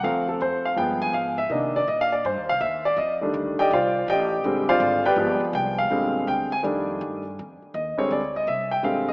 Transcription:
0.03 0.39 D2 medium
0.03 0.73 F3 soft
0.03 0.73 A3 soft
0.03 0.74 C4 medium
0.03 0.27 F5 medium
0.29 0.40 A4 medium
0.41 0.76 F2 medium
0.41 0.65 C5 medium
0.65 0.77 F5 medium
0.76 1.12 G2 medium
0.76 1.34 F3 soft
0.76 1.35 G#3 soft
0.76 1.35 B3 medium
0.76 1.01 G5 medium
1.02 1.14 G#5 loud
1.13 1.49 G#2 medium
1.13 1.37 F5 medium
1.38 1.50 E5 medium
1.50 1.86 C3 medium
1.50 1.78 D#3 soft
1.50 1.78 A#3 soft
1.50 1.79 D4 medium
1.50 1.74 D#5 medium
1.76 1.87 D5 medium
1.88 2.23 A#2 medium
1.88 1.99 D#5 medium
2.01 2.12 F5 medium
2.12 2.24 D5 medium
2.25 2.37 G2 medium
2.25 2.48 C5 medium
2.37 2.49 D#2 medium
2.49 2.60 C2 medium
2.49 2.61 F5 medium
2.60 2.96 D#2 medium
2.60 2.84 E5 medium
2.85 2.97 D5 medium
2.97 3.32 F2 medium
2.97 3.12 D#5 medium
3.21 3.68 D#3 medium
3.21 3.68 G3 soft
3.21 3.68 A3 soft
3.21 3.69 D4 medium
3.34 3.56 D2 medium
3.59 3.71 G4 medium
3.59 3.71 D5 medium
3.59 3.71 D#5 medium
3.59 3.71 G5 medium
3.59 muted upright bass stroke soft
3.71 4.06 C2 medium
3.71 4.06 F4 medium
3.71 4.06 C5 medium
3.71 4.06 D5 medium
3.71 4.06 F5 medium
4.08 4.43 A1 loud
4.08 4.65 G4 medium
4.08 4.65 D5 medium
4.08 4.43 D#5 medium
4.08 4.65 G5 medium
4.44 4.66 A#1 medium
4.44 5.02 D3 medium
4.44 5.02 G3 soft
4.44 5.03 G#3 soft
4.44 5.03 C4 medium
4.69 5.03 F4 medium
4.69 5.03 C5 medium
4.69 5.03 D5 medium
4.69 5.03 F5 medium
4.69 muted upright bass stroke soft
4.80 5.15 G#1 loud
5.06 5.40 G4 medium
5.06 5.40 B4 medium
5.06 5.40 D5 medium
5.06 5.39 G5 medium
5.16 5.39 G1 medium
5.16 5.86 F3 medium
5.16 5.87 G#3 soft
5.16 5.87 B3 medium
5.41 muted upright bass stroke soft
5.53 5.89 C2 loud
5.53 5.78 G5 medium
5.78 6.24 F5 medium
5.90 6.26 A#1 medium
5.90 6.49 D3 soft
5.90 6.49 G3 soft
5.90 6.49 G#3 soft
5.90 6.49 C4 medium
6.27 6.63 D2 medium
6.27 6.51 G5 medium
6.52 6.60 G#5 medium
6.63 7.00 F2 medium
6.63 7.21 D#3 soft
6.63 7.22 G3 soft
6.63 7.22 A3 soft
6.63 7.22 D4 medium
7.01 7.37 G2 medium
7.39 7.61 F2 medium
7.62 muted upright bass stroke soft
7.74 7.97 D#2 medium
7.74 7.98 D#5 medium
7.98 8.19 D3 soft
7.98 8.19 G3 soft
7.98 8.19 G#3 soft
7.98 8.20 C4 medium
7.98 8.11 C#5 medium
7.98 muted upright bass stroke soft
8.11 8.46 D2 medium
8.11 8.35 D5 medium
8.36 8.48 D#5 medium
8.47 8.83 C2 medium
8.47 8.71 E5 medium
8.71 8.84 G5 medium
8.83 9.13 A#1 medium
8.83 9.11 D3 soft
8.83 9.12 G3 soft
8.83 9.12 G#3 soft
8.83 9.12 C4 medium
8.83 9.08 F5 medium
9.09 9.13 D#5 medium

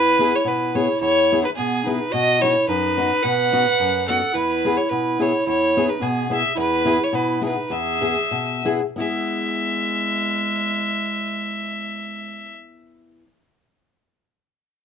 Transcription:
0.00 0.32 E2 medium
0.00 0.31 E4 medium
0.00 0.37 B4 loud
0.19 0.31 B3 medium
0.19 0.31 E4 medium
0.19 0.32 G#4 medium
0.31 0.44 E4 medium
0.35 0.49 C#5 medium
0.44 0.87 B2 medium
0.44 0.73 E4 medium
0.44 0.77 B4 medium
0.73 0.87 B3 medium
0.73 1.00 E4 medium
0.73 0.87 E4 medium
0.73 0.87 G#4 medium
0.73 0.99 C#5 medium
1.00 1.43 E2 medium
1.00 1.40 E4 medium
1.00 1.40 C#5 loud
1.32 1.43 B3 medium
1.32 1.43 E4 medium
1.32 1.44 G#4 medium
1.42 1.48 D#4 medium
1.42 1.50 B4 medium
1.55 2.00 B2 medium
1.55 1.85 B3 medium
1.55 1.88 G#4 medium
1.84 1.98 B3 medium
1.84 2.12 D#4 medium
1.84 1.99 E4 medium
1.84 2.13 B4 medium
1.88 1.99 G#4 medium
2.11 2.55 B2 medium
2.11 2.42 F#4 medium
2.11 2.43 D#5 loud
2.40 2.54 B3 medium
2.40 2.54 D#4 medium
2.40 2.67 E4 medium
2.40 2.54 F#4 medium
2.40 2.68 C#5 loud
2.68 3.10 F#2 medium
2.68 3.25 D#4 medium
2.68 3.24 B4 loud
2.97 3.09 B3 medium
2.97 3.09 D#4 medium
2.97 3.09 F#4 medium
3.23 3.66 B2 medium
3.23 4.06 B4 medium
3.23 4.07 F#5 loud
3.52 3.64 B3 medium
3.52 3.64 D#4 medium
3.52 3.65 F#4 medium
3.80 4.21 F#2 medium
4.07 4.20 B3 medium
4.07 4.21 D#4 medium
4.07 4.21 F#4 medium
4.07 4.35 A4 medium
4.07 4.35 F#5 medium
4.33 4.77 E2 medium
4.33 4.78 E4 medium
4.33 4.78 B4 loud
4.65 4.76 B3 medium
4.65 4.77 E4 medium
4.65 4.77 G#4 medium
4.77 4.90 E4 medium
4.77 4.91 C#5 medium
4.89 5.33 B2 medium
4.89 5.21 E4 medium
4.89 5.23 B4 medium
5.19 5.31 B3 medium
5.19 5.31 E4 medium
5.19 5.45 E4 medium
5.19 5.32 G#4 medium
5.19 5.46 C#5 medium
5.46 5.88 E2 medium
5.46 5.89 E4 medium
5.46 5.90 C#5 medium
5.77 5.88 B3 medium
5.77 5.88 E4 medium
5.77 5.88 G#4 medium
5.87 6.02 D#4 medium
5.87 6.04 B4 medium
6.00 6.43 B2 medium
6.00 6.29 B3 medium
6.00 6.31 G#4 medium
6.30 6.42 B3 medium
6.30 6.42 E4 medium
6.30 6.54 G#4 medium
6.30 6.42 G#4 medium
6.30 6.55 E5 medium
6.55 6.98 E2 medium
6.55 7.00 E4 medium
6.55 7.05 B4 loud
6.85 6.97 B3 medium
6.85 6.97 E4 medium
6.85 6.98 G#4 medium
7.00 7.13 E4 medium
7.00 7.17 C#5 medium
7.13 7.56 B2 medium
7.13 7.42 E4 medium
7.13 7.44 B4 medium
7.41 7.54 B3 medium
7.41 7.72 D#4 medium
7.41 7.54 E4 medium
7.41 7.54 G#4 medium
7.41 7.73 B4 medium
7.70 8.16 E2 medium
7.70 8.67 G#4 medium
7.70 8.68 E5 loud
8.01 8.15 B3 medium
8.01 8.15 E4 medium
8.01 8.15 G#4 medium
8.31 8.82 B2 medium
8.65 8.80 B3 medium
8.65 8.80 E4 medium
8.65 8.80 G#4 medium
8.96 12.54 G#3 medium
8.96 13.23 B3 medium
8.96 13.24 E4 medium
8.96 12.55 E5 loud
9.01 13.26 G#4 medium

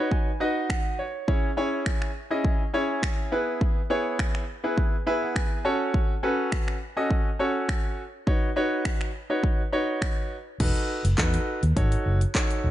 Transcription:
0.00 0.29 D#4 medium
0.00 0.29 F#4 medium
0.00 0.29 B4 medium
0.00 0.29 C#5 medium
0.11 0.39 G#5 medium
0.11 kick loud
0.40 1.02 D#4 medium
0.40 1.03 F#4 medium
0.40 1.03 B4 medium
0.40 1.03 D#5 medium
0.40 0.68 F#5 medium
0.70 finger snap loud
0.70 kick loud
0.99 1.26 C#5 medium
1.28 1.49 C#4 medium
1.28 1.49 E4 medium
1.28 1.49 G#4 medium
1.28 1.49 C#5 medium
1.28 kick loud
1.57 2.09 C#4 medium
1.57 2.09 E4 medium
1.57 2.09 G#4 medium
1.57 2.09 C#5 loud
1.86 finger snap loud
1.86 kick loud
2.02 finger snap medium
2.31 2.62 C#4 medium
2.31 2.62 E4 medium
2.31 2.62 G#4 medium
2.31 2.62 D#5 medium
2.45 kick loud
2.74 3.32 C#4 medium
2.74 3.31 E4 medium
2.74 3.31 G#4 medium
2.74 3.32 C#5 medium
3.03 finger snap loud
3.03 kick loud
3.32 3.79 B3 medium
3.32 3.79 E4 medium
3.32 3.79 G#4 medium
3.32 3.79 B4 medium
3.61 kick loud
3.90 4.42 B3 medium
3.90 4.42 E4 medium
3.90 4.42 G#4 medium
3.90 4.42 C#5 medium
4.19 finger snap loud
4.19 kick loud
4.35 finger snap medium
4.64 4.95 B3 medium
4.64 4.95 E4 medium
4.64 4.95 G#4 medium
4.64 4.95 B4 medium
4.78 kick loud
5.06 5.65 B3 medium
5.06 5.65 E4 medium
5.06 5.65 G#4 medium
5.06 5.65 B4 loud
5.06 5.21 E5 medium
5.22 5.35 F#5 medium
5.36 5.63 G#5 medium
5.36 finger snap loud
5.36 kick medium
5.65 6.12 C#4 medium
5.65 6.12 F#4 medium
5.65 6.12 A4 medium
5.65 6.12 C#5 loud
5.65 5.92 A5 medium
5.94 kick loud
6.23 6.75 C#4 medium
6.23 6.75 F#4 medium
6.23 6.75 A4 medium
6.23 6.75 B4 loud
6.52 finger snap loud
6.52 kick loud
6.68 finger snap medium
6.97 7.28 C#4 medium
6.97 7.28 F#4 medium
6.97 7.28 A4 medium
6.97 7.28 D#5 medium
7.11 kick loud
7.39 8.02 C#4 medium
7.39 8.02 F#4 medium
7.39 8.02 A4 medium
7.39 8.02 C#5 medium
7.69 finger snap loud
7.69 kick loud
8.27 8.48 D#4 medium
8.27 8.48 F#4 medium
8.27 8.48 B4 medium
8.27 8.48 C#5 medium
8.27 kick loud
8.56 9.08 D#4 medium
8.56 9.08 F#4 medium
8.56 9.08 B4 medium
8.56 9.08 C#5 loud
8.85 finger snap loud
8.85 kick loud
9.01 finger snap medium
9.30 9.61 D#4 medium
9.30 9.61 F#4 medium
9.30 9.61 B4 medium
9.30 9.61 C#5 medium
9.44 kick loud
9.72 10.35 D#4 medium
9.72 10.35 F#4 medium
9.72 10.35 B4 medium
9.72 10.35 C#5 loud
10.02 finger snap loud
10.02 kick loud
10.60 10.70 E1 loud
10.60 11.02 D#4 medium
10.60 11.02 F#4 medium
10.60 11.02 A4 medium
10.60 11.02 B4 medium
10.60 kick loud
10.60 closed hi-hat medium
10.60 crash medium
10.75 closed hi-hat medium
11.05 11.13 F#1 medium
11.05 closed hi-hat medium
11.18 11.36 E2 loud
11.18 11.60 D#4 medium
11.18 11.60 F#4 medium
11.18 11.60 A4 medium
11.18 11.60 B4 medium
11.18 kick loud
11.18 clap loud
11.18 closed hi-hat medium
11.34 closed hi-hat medium
11.63 11.71 D#2 medium
11.63 closed hi-hat medium
11.76 11.94 G#1 loud
11.76 12.18 D#4 medium
11.76 12.18 F#4 medium
11.76 12.19 A4 medium
11.76 12.19 C#5 medium
11.76 kick loud
11.76 closed hi-hat medium
11.92 closed hi-hat medium
12.06 12.24 F#1 medium
12.21 closed hi-hat medium
12.35 12.71 D#4 medium
12.35 12.71 F#4 medium
12.35 12.71 A4 medium
12.35 12.71 C#5 medium
12.35 kick loud
12.35 clap loud
12.35 closed hi-hat medium
12.51 closed hi-hat medium
12.64 12.71 D#1 loud

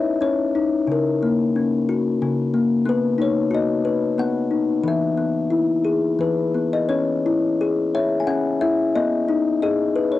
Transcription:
0.00 0.20 C#4 medium
0.00 0.54 D#4 medium
0.00 0.89 E4 medium
0.00 0.21 C#5 medium
0.00 0.23 E5 medium
0.21 0.89 C#4 medium
0.21 0.85 C#5 medium
0.55 0.89 D#4 medium
0.87 2.21 C#3 medium
0.92 2.19 A#4 medium
1.23 2.53 A#3 medium
1.56 2.87 C#4 medium
1.89 2.87 F#4 medium
2.22 2.87 C#3 medium
2.54 2.87 A#3 medium
2.86 4.17 B3 medium
2.86 3.22 B4 medium
3.18 4.50 D#4 medium
3.18 3.54 C#5 medium
3.51 4.84 F#4 medium
3.51 4.21 D#5 medium
3.85 4.84 B4 medium
4.18 4.84 B3 medium
4.18 4.87 F#5 medium
4.51 4.84 D#4 medium
4.83 6.18 E3 medium
4.88 6.18 E5 medium
5.17 6.53 B3 medium
5.50 6.90 E4 medium
5.85 6.90 G#4 medium
6.19 6.90 E3 medium
6.19 6.75 B4 medium
6.55 6.90 B3 medium
6.73 6.81 D#5 medium
6.89 8.27 C#4 medium
6.89 7.55 C#5 medium
7.26 8.61 E4 medium
7.61 8.96 G#4 medium
7.95 8.95 C#5 medium
7.95 8.19 E5 medium
8.20 8.27 G#5 medium
8.27 8.95 C#4 medium
8.27 8.62 F#5 medium
8.61 8.96 E4 medium
8.61 8.93 E5 medium
8.96 10.20 B3 medium
8.96 9.61 D#5 loud
9.29 10.20 D#4 medium
9.62 10.20 G#4 medium
9.62 10.13 D#5 medium
9.96 10.20 B4 medium
10.12 10.20 C#5 medium

